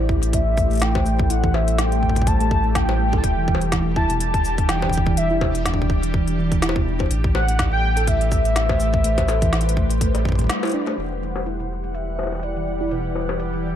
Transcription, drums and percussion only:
0.09 kick loud
0.23 closed hi-hat medium
0.33 kick loud
0.33 closed hi-hat medium
0.58 kick loud
0.58 cabasa medium
0.71 closed hi-hat soft
0.73 closed hi-hat soft
0.75 closed hi-hat soft
0.77 closed hi-hat soft
0.80 snare loud
0.80 closed hi-hat soft
0.82 closed hi-hat medium
0.95 kick loud
0.95 high bongo medium
1.06 cabasa medium
1.19 kick loud
1.30 closed hi-hat medium
1.44 kick loud
1.54 high bongo medium
1.68 closed hi-hat medium
1.78 snare loud
1.78 closed hi-hat medium
1.92 closed hi-hat soft
2.03 kick soft
2.09 kick medium
2.16 kick medium
2.16 closed hi-hat medium
2.22 kick medium
2.27 kick loud
2.27 closed hi-hat medium
2.40 closed hi-hat soft
2.51 kick loud
2.75 kick loud
2.75 snare loud
2.75 closed hi-hat medium
2.89 high bongo medium
3.13 kick loud
3.13 high bongo soft
3.24 kick loud
3.24 closed hi-hat medium
3.48 kick loud
3.55 high bongo medium
3.61 closed hi-hat soft
3.72 kick loud
3.72 snare loud
3.72 closed hi-hat medium
3.96 kick loud
4.10 closed hi-hat soft
4.20 closed hi-hat medium
4.34 kick loud
4.34 closed hi-hat soft
4.45 cabasa medium
4.58 kick loud
4.58 closed hi-hat soft
4.69 snare loud
4.69 closed hi-hat medium
4.82 kick soft
4.82 high bongo medium
4.89 kick medium
4.89 cabasa medium
4.97 kick medium
5.07 kick loud
5.17 closed hi-hat medium
5.41 kick loud
5.41 high bongo medium
5.55 closed hi-hat soft
5.66 kick medium
5.66 snare loud
5.66 closed hi-hat medium
5.74 kick medium
5.82 kick medium
5.90 kick loud
6.03 closed hi-hat soft
6.14 kick loud
6.28 closed hi-hat soft
6.52 kick loud
6.52 closed hi-hat soft
6.62 snare loud
6.62 closed hi-hat medium
6.69 high bongo medium
6.76 kick loud
7.00 kick loud
7.00 high bongo medium
7.11 closed hi-hat medium
7.24 kick loud
7.35 high bongo medium
7.48 closed hi-hat medium
7.59 kick loud
7.59 snare loud
7.59 closed hi-hat medium
7.97 closed hi-hat soft
8.07 kick loud
8.07 closed hi-hat medium
8.21 closed hi-hat soft
8.32 kick loud
8.32 cabasa medium
8.45 closed hi-hat soft
8.56 snare loud
8.56 closed hi-hat medium
8.69 kick loud
8.69 high bongo medium
8.80 cabasa medium
8.94 kick loud
9.04 closed hi-hat medium
9.18 kick loud
9.18 closed hi-hat soft
9.18 high bongo medium
9.28 high bongo medium
9.28 cabasa medium
9.42 kick loud
9.42 closed hi-hat medium
9.53 snare loud
9.53 closed hi-hat soft
9.61 closed hi-hat soft
9.69 closed hi-hat medium
9.77 kick loud
9.90 closed hi-hat medium
10.01 kick loud
10.01 closed hi-hat medium
10.15 closed hi-hat soft
10.15 high bongo soft
10.25 kick medium
10.29 kick medium
10.32 kick medium
10.35 kick medium
10.39 kick soft
10.39 closed hi-hat soft
10.41 kick soft
10.44 kick soft
10.47 kick soft
10.47 snare loud
10.47 closed hi-hat medium
10.63 closed hi-hat soft
10.63 high bongo medium
10.65 closed hi-hat soft
10.67 closed hi-hat soft
10.69 closed hi-hat soft
10.72 closed hi-hat soft
10.87 high bongo medium
10.98 closed hi-hat medium
11.36 closed hi-hat soft
11.36 high bongo medium
11.38 closed hi-hat soft
11.43 closed hi-hat soft
11.46 closed hi-hat medium
11.51 closed hi-hat soft
11.54 closed hi-hat soft
11.60 closed hi-hat soft
11.84 closed hi-hat soft
11.95 closed hi-hat medium
12.19 high bongo soft
12.19 cabasa medium
12.23 high bongo soft
12.27 high bongo soft
12.32 high bongo soft
12.35 high bongo soft
12.39 closed hi-hat medium
12.39 high bongo soft
12.56 closed hi-hat soft
12.67 cabasa medium
12.91 closed hi-hat medium
13.16 high bongo soft
13.29 closed hi-hat soft
13.29 high bongo medium
13.40 closed hi-hat medium
13.53 closed hi-hat soft

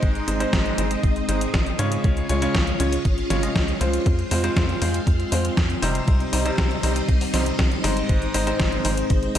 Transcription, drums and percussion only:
0.03 kick loud
0.03 closed hi-hat medium
0.15 closed hi-hat soft
0.28 closed hi-hat medium
0.40 closed hi-hat medium
0.53 kick loud
0.53 snare loud
0.53 closed hi-hat medium
0.66 closed hi-hat soft
0.78 closed hi-hat medium
0.91 closed hi-hat soft
1.03 kick loud
1.03 closed hi-hat medium
1.16 closed hi-hat soft
1.29 closed hi-hat medium
1.41 closed hi-hat medium
1.54 kick loud
1.54 snare loud
1.54 closed hi-hat soft
1.66 closed hi-hat soft
1.79 closed hi-hat medium
1.92 closed hi-hat medium
2.04 kick loud
2.04 closed hi-hat soft
2.17 closed hi-hat soft
2.29 closed hi-hat medium
2.42 closed hi-hat soft
2.55 kick loud
2.55 snare loud
2.55 closed hi-hat medium
2.67 closed hi-hat soft
2.80 closed hi-hat medium
2.93 closed hi-hat soft
3.05 kick loud
3.05 closed hi-hat medium
3.18 closed hi-hat soft
3.30 snare medium
3.30 closed hi-hat medium
3.43 closed hi-hat medium
3.56 kick loud
3.56 snare loud
3.56 closed hi-hat soft
3.68 closed hi-hat soft
3.81 closed hi-hat medium
3.93 closed hi-hat soft
4.06 kick loud
4.06 closed hi-hat soft
4.19 closed hi-hat soft
4.31 open hi-hat loud
4.44 closed hi-hat soft
4.56 kick loud
4.56 snare loud
4.56 closed hi-hat soft
4.69 closed hi-hat soft
4.82 open hi-hat loud
4.94 closed hi-hat soft
5.07 kick loud
5.07 closed hi-hat soft
5.20 closed hi-hat soft
5.32 open hi-hat loud
5.45 closed hi-hat medium
5.57 kick loud
5.57 snare loud
5.57 closed hi-hat soft
5.70 closed hi-hat soft
5.83 open hi-hat loud
5.95 closed hi-hat soft
6.08 kick loud
6.08 closed hi-hat medium
6.20 closed hi-hat soft
6.33 open hi-hat loud
6.46 closed hi-hat medium
6.58 kick loud
6.58 snare loud
6.58 closed hi-hat medium
6.71 closed hi-hat soft
6.83 open hi-hat loud
6.96 closed hi-hat medium
7.09 kick loud
7.09 closed hi-hat medium
7.21 open hi-hat medium
7.34 snare medium
7.34 open hi-hat loud
7.46 closed hi-hat medium
7.59 kick loud
7.59 snare loud
7.59 closed hi-hat soft
7.72 closed hi-hat soft
7.84 open hi-hat loud
7.97 closed hi-hat medium
8.09 kick loud
8.09 closed hi-hat medium
8.22 closed hi-hat soft
8.34 open hi-hat loud
8.47 closed hi-hat medium
8.60 kick loud
8.60 snare loud
8.60 closed hi-hat medium
8.72 closed hi-hat soft
8.85 open hi-hat loud
8.97 closed hi-hat medium
9.10 kick loud
9.10 closed hi-hat medium
9.23 closed hi-hat soft
9.35 open hi-hat loud

